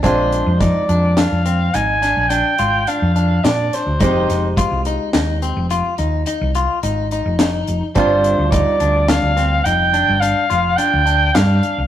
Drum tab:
HH |xxxxxxxxxxxxxx|xxxxxxxxxxxxxx|xxxxxxxxxxxxxx|
SD |--o-o--oo---oo|-o--o-------o-|----oo------o-|
BD |o-o-----------|o-o-----------|o-o-----------|